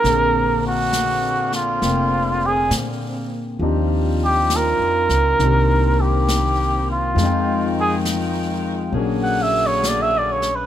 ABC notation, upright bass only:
X:1
M:4/4
L:1/8
Q:"Swing" 1/4=67
K:Bbmix
V:1 name="Upright bass" clef=bass
B,,,4 F,,,2 B,,2 | E,,2- (3E,, F,, _D,, C,,4 | F,,4 B,,,4 |]